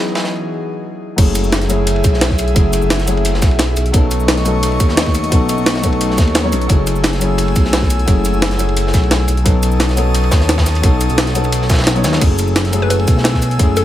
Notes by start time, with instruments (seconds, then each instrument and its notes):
Already playing: analog synth pad E3 F#3 G#4 D#5, grand piano F#3 B3 D#4 E4 G#4
0.15 snare, ride
0.24 snare
1.16 analog synth bass F#1, grand piano F#3 A3 C#4 E4 G#4, analog synth pad G#4 E5, kick, closed hi-hat, crash, ride
1.35 closed hi-hat, ride, shaker
1.44 shaker
1.52 snare, closed hi-hat, ride
1.62 snare, closed hi-hat
1.68 grand piano F#3 A3 C#4 E4 G#4, closed hi-hat, ride, shaker
1.87 closed hi-hat, ride
1.96 ride
2.04 analog synth bass B1, kick, closed hi-hat, ride, shaker
2.14 snare
2.21 snare, closed hi-hat, ride
2.30 kick, snare
2.39 closed hi-hat, ride, shaker
2.48 closed hi-hat
2.54 analog synth bass F#1, grand piano F#3 A3 C#4 E4 G#4, kick, closed hi-hat, ride
2.73 closed hi-hat, ride, shaker
2.82 analog synth bass F#1, shaker
2.90 snare, closed hi-hat, ride
2.99 snare, closed hi-hat
3.06 grand piano F#3 A3 C#4 E4 G#4, closed hi-hat, ride, shaker
3.17 ride
3.25 closed hi-hat, ride
3.34 snare
3.42 analog synth bass B1, kick, snare, closed hi-hat, ride, shaker
3.51 ride
3.59 snare, closed hi-hat, ride
3.77 analog synth bass B1, analog synth pad A3 D#5 C#6, closed hi-hat, ride, shaker
3.86 closed hi-hat
3.92 analog synth bass B1, grand piano F#3 B3 C#4 D#4 A4, kick, closed hi-hat, ride
4.11 closed hi-hat, ride, shaker
4.20 shaker
4.28 snare, closed hi-hat, ride
4.37 snare, closed hi-hat
4.44 grand piano F#3 B3 C#4 D#4 A4, closed hi-hat, ride, shaker
4.63 closed hi-hat, ride
4.72 ride
4.80 analog synth bass D#2, kick, closed hi-hat, ride, shaker
4.89 snare
4.97 snare, closed hi-hat, ride
5.06 kick, snare
5.15 closed hi-hat, ride, shaker
5.24 closed hi-hat
5.30 analog synth bass B1, grand piano F#3 B3 C#4 D#4 A4, kick, closed hi-hat, ride
5.49 closed hi-hat, ride, shaker
5.58 analog synth bass B1, shaker
5.66 snare, closed hi-hat, ride
5.75 snare, closed hi-hat
5.82 grand piano F#3 B3 C#4 D#4 A4, kick, closed hi-hat, ride, shaker
5.92 ride
6.01 closed hi-hat, ride
6.11 snare
6.18 analog synth bass D#2, kick, snare, closed hi-hat, ride, shaker
6.27 ride
6.35 snare, closed hi-hat, ride
6.43 grand piano F#3 B3 C#4 D#4 C#5
6.52 analog synth bass B1, closed hi-hat, ride, shaker
6.62 closed hi-hat
6.68 analog synth bass F#1, grand piano F#3 A3 C#4 E4 G#4, analog synth pad G#5 E6, kick, closed hi-hat, ride
6.87 closed hi-hat, ride, shaker
6.96 shaker
7.04 snare, closed hi-hat, ride
7.13 snare, closed hi-hat
7.19 grand piano F#3 A3 C#4 E4 G#4, closed hi-hat, ride, shaker
7.38 closed hi-hat, ride
7.48 ride
7.56 analog synth bass B1, kick, closed hi-hat, ride, shaker
7.65 snare
7.73 snare, closed hi-hat, ride
7.82 kick, snare
7.90 closed hi-hat, ride, shaker
7.99 closed hi-hat
8.06 analog synth bass F#1, grand piano F#3 A3 C#4 E4 G#4, kick, closed hi-hat, ride
8.25 closed hi-hat, ride, shaker
8.34 analog synth bass F#1, shaker
8.42 snare, closed hi-hat, ride
8.51 snare, closed hi-hat
8.57 grand piano F#3 A3 C#4 E4 G#4, closed hi-hat, ride, shaker
8.69 ride
8.77 closed hi-hat, ride
8.87 snare
8.94 analog synth bass B1, kick, snare, closed hi-hat, ride, shaker
9.03 ride
9.11 snare, closed hi-hat, ride
9.28 analog synth bass B1, analog synth pad C#5 A5 D#6, closed hi-hat, ride, shaker
9.37 closed hi-hat
9.44 analog synth bass B1, grand piano F#3 B3 C#4 D#4 A4, kick, closed hi-hat, ride
9.63 closed hi-hat, ride, shaker
9.72 shaker
9.80 snare, closed hi-hat, ride
9.89 snare, closed hi-hat
9.95 grand piano F#3 B3 C#4 D#4 A4, closed hi-hat, ride, shaker
10.14 closed hi-hat, ride
10.24 ride
10.31 analog synth bass D#2, kick, snare, closed hi-hat, ride, shaker
10.41 snare
10.49 snare, closed hi-hat, ride
10.58 kick, snare, ride
10.66 snare, closed hi-hat, shaker
10.75 closed hi-hat, ride
10.82 analog synth bass B1, grand piano F#3 B3 C#4 D#4 A4, kick, closed hi-hat, ride
11.01 closed hi-hat, ride, shaker
11.10 analog synth bass B1, closed hi-hat, shaker
11.18 snare, closed hi-hat, ride
11.27 snare, closed hi-hat
11.33 grand piano F#3 B3 C#4 D#4 A4, closed hi-hat, ride, shaker
11.44 ride, shaker
11.52 closed hi-hat, ride
11.62 snare
11.69 kick, snare, closed hi-hat, ride, shaker
11.74 snare, ride
11.79 snare, ride
11.82 snare, ride
11.87 snare, closed hi-hat, ride
11.95 grand piano F#3 B3 C#4 D#4 C#5, closed hi-hat
12.04 analog synth bass D#2, snare, closed hi-hat, ride, shaker
12.13 snare, closed hi-hat, ride
12.19 analog synth bass F#1, grand piano F#3 A3 C#4 E4 G#4, analog synth pad A3 G#5 E6, kick, closed hi-hat, crash, ride
12.39 closed hi-hat, ride, shaker
12.48 shaker
12.56 snare, closed hi-hat, ride
12.65 snare, closed hi-hat
12.71 grand piano F#3 A3 C#4 E4 G#4, closed hi-hat, ride, shaker
12.82 synth pluck B4
12.90 synth pluck B4, closed hi-hat, ride
12.99 ride
13.08 analog synth bass B1, kick, closed hi-hat, ride, shaker
13.17 snare
13.24 snare, closed hi-hat, ride
13.34 kick, snare
13.42 closed hi-hat, ride, shaker
13.51 closed hi-hat
13.58 analog synth bass F#1, grand piano F#3 A3 C#4 E4 G#4, kick, closed hi-hat, ride
13.77 synth pluck A4, closed hi-hat, ride, shaker